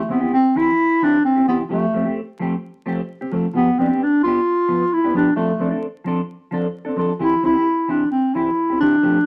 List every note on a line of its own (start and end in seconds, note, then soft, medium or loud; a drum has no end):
0.08 0.21 E3 medium
0.08 0.32 B3 medium
0.08 0.22 C4 medium
0.08 0.21 E4 medium
0.08 0.20 G4 medium
0.21 0.36 C4 soft
0.21 0.36 E4 soft
0.21 0.35 G4 medium
0.33 0.58 C4 loud
0.55 0.70 E3 medium
0.55 0.70 C4 medium
0.55 1.05 E4 loud
0.55 0.70 E4 medium
0.55 0.71 G4 medium
1.02 1.16 E3 medium
1.02 1.16 C4 medium
1.02 1.24 D4 loud
1.02 1.17 E4 medium
1.02 1.17 G4 medium
1.25 1.46 C4 medium
1.36 1.47 C4 soft
1.36 1.47 E4 medium
1.36 1.48 G4 medium
1.48 1.62 E3 medium
1.48 1.58 B3 medium
1.48 1.62 C4 medium
1.48 1.62 E4 medium
1.48 1.63 G4 medium
1.69 1.84 F3 medium
1.69 1.84 A3 medium
1.69 2.14 A3 loud
1.69 1.85 C4 medium
1.69 1.85 G4 medium
1.93 2.05 F3 medium
1.93 2.06 A3 medium
1.93 2.05 C4 medium
1.93 2.04 G4 medium
2.05 2.20 A3 soft
2.05 2.20 C4 medium
2.05 2.19 G4 medium
2.39 2.53 F3 medium
2.39 2.54 A3 medium
2.39 2.54 C4 medium
2.39 2.55 G4 medium
2.86 2.99 F3 medium
2.86 3.00 A3 medium
2.86 3.00 C4 medium
2.86 3.01 G4 medium
3.21 3.32 C4 medium
3.21 3.32 G4 medium
3.21 muted clean electric guitar stroke medium
3.32 3.45 F3 medium
3.32 3.46 A3 medium
3.32 3.46 C4 medium
3.32 muted clean electric guitar stroke medium
3.54 3.68 F3 medium
3.54 3.69 B3 medium
3.54 3.80 B3 loud
3.54 3.69 G4 medium
3.54 muted clean electric guitar stroke medium
3.78 3.89 F3 medium
3.78 3.90 B3 medium
3.78 4.05 C4 loud
3.78 3.90 D4 medium
3.78 3.88 G4 medium
3.89 4.04 B3 soft
3.89 4.03 D4 medium
3.89 4.03 G4 medium
4.03 4.23 D4 loud
4.23 4.38 B3 medium
4.23 4.39 D4 medium
4.23 4.95 F4 loud
4.28 4.39 G4 medium
4.68 4.82 F3 medium
4.68 4.83 B3 medium
4.93 5.15 E4 loud
5.04 5.14 B3 soft
5.04 5.15 D4 medium
5.04 5.15 G4 medium
5.14 5.28 F3 medium
5.14 5.29 B3 medium
5.14 5.29 D4 medium
5.14 5.35 D4 loud
5.14 5.30 G4 medium
5.36 5.50 F3 medium
5.36 5.79 A3 medium
5.36 5.51 C4 medium
5.36 5.51 D4 medium
5.36 5.51 A4 medium
5.59 5.71 F3 medium
5.59 5.72 C4 medium
5.59 5.70 D4 medium
5.59 5.69 A4 medium
5.71 5.86 C4 soft
5.71 5.85 D4 medium
5.71 5.85 A4 medium
6.04 6.19 F3 medium
6.04 6.20 C4 medium
6.04 6.21 D4 medium
6.04 6.21 A4 medium
6.51 6.65 F3 medium
6.51 6.66 C4 medium
6.51 6.66 D4 medium
6.51 6.67 A4 medium
6.85 6.96 C4 soft
6.85 6.97 D4 medium
6.85 6.97 A4 medium
6.96 7.11 F3 medium
6.96 7.11 C4 medium
6.96 7.12 D4 medium
6.96 7.12 A4 medium
7.19 7.34 E3 medium
7.19 7.34 C4 medium
7.19 7.34 E4 medium
7.19 7.35 G4 medium
7.24 7.44 E4 loud
7.42 7.54 E3 medium
7.42 7.55 C4 medium
7.42 7.54 E4 medium
7.42 7.92 E4 loud
7.42 7.52 G4 medium
7.53 7.69 E4 soft
7.53 7.68 G4 medium
7.88 8.02 E3 medium
7.88 8.03 C4 medium
7.88 8.11 D4 medium
7.88 8.03 E4 medium
7.88 8.04 G4 medium
8.11 8.36 C4 medium
8.35 8.49 E3 medium
8.35 8.49 C4 medium
8.35 8.79 E4 loud
8.35 8.49 E4 medium
8.35 8.50 G4 medium
8.70 8.80 C4 soft
8.70 8.81 G4 medium
8.80 8.95 E3 medium
8.80 8.95 C4 medium
8.80 9.26 D4 loud
8.80 8.96 E4 medium
8.80 8.96 G4 medium
9.03 9.17 F3 medium
9.03 9.17 A3 medium
9.03 9.17 C4 medium
9.03 9.18 G4 medium